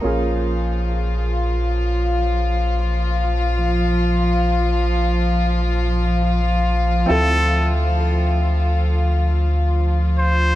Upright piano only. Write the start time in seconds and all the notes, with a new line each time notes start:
0.01 A#3 C#4 F4
0.05 G#4
7.06 C4 E4 F4
7.11 A4